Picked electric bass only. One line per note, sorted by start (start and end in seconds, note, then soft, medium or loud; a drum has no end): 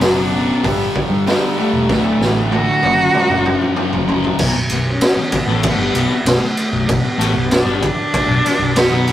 0.01 0.50 F#1 medium
0.64 0.88 G1 loud
1.10 1.35 G2 medium
1.73 1.86 E1 medium
1.90 2.14 D1 loud
2.21 2.69 A1 medium
2.83 3.07 F#1 medium
3.30 3.54 F#1 loud
3.94 4.29 F#1 medium
4.40 4.54 B0 medium
4.55 4.69 B0 medium
4.70 4.99 B0 medium
5.17 muted picked electric bass stroke soft
5.32 muted picked electric bass stroke soft
5.47 5.77 A1 loud
5.79 5.93 G1 loud
5.94 6.09 B0 loud
6.25 6.40 B0 medium
6.73 6.88 B0 medium
6.89 7.02 B0 medium
7.03 muted picked electric bass stroke soft
7.18 7.33 A1 medium
7.34 7.63 B0 medium
7.65 7.80 G1 loud
7.83 muted picked electric bass stroke soft
8.28 8.43 B0 medium
8.59 8.74 B0 medium
8.75 8.90 B0 medium
8.91 9.12 B0 loud